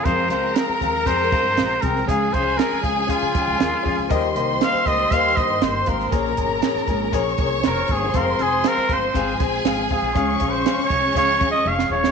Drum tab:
HH |x-x-x-x-x-x-x-x-|x-x-x-x-x-x-x-o-|x-x-x-x-x-x-x-x-|x-x-x-x-x-x-x-x-|
SD |--o-o-------o--o|----oo------o---|----o-------o--o|----oo------o---|
BD |o-----o-o-o---o-|o-o---o-o-o---o-|o-----o-o-o---o-|o-o---o-o-o---o-|

HH |x-x-x-x-x-x-x-o-|x-x-x-x-x-x-----|
SD |--o-oo------o---|----oo-------o-o|
BD |o-----o-o-o---o-|o-o---o-o-o-----|